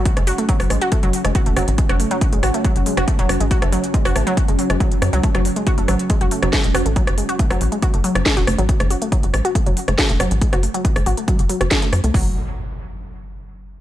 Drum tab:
HH |xxoxxooxxxoxxxox|xxoxxxoxxxoxxxox|xxoxxooxxxoxxxox|xxoxxxoxxxoxxxox|
SD |-r---rr----r--r-|-r----r----r--r-|-r---rr----r--r-|-r----r----ro-r-|
BD |o---o---o---o---|o---o---o---o---|o---o---o---o---|o---o---o---o---|

HH |xxoxxooxxxoxxxox|xxoxxxoxxxoxxxox|xxoxxooxxxoxxxox|o---------------|
SD |-r---r-----ro-r-|-r----r----ro-r-|-r---r-----ro-r-|----------------|
BD |o---o---o---o---|o---o---o---o---|o---o---o---o---|o---------------|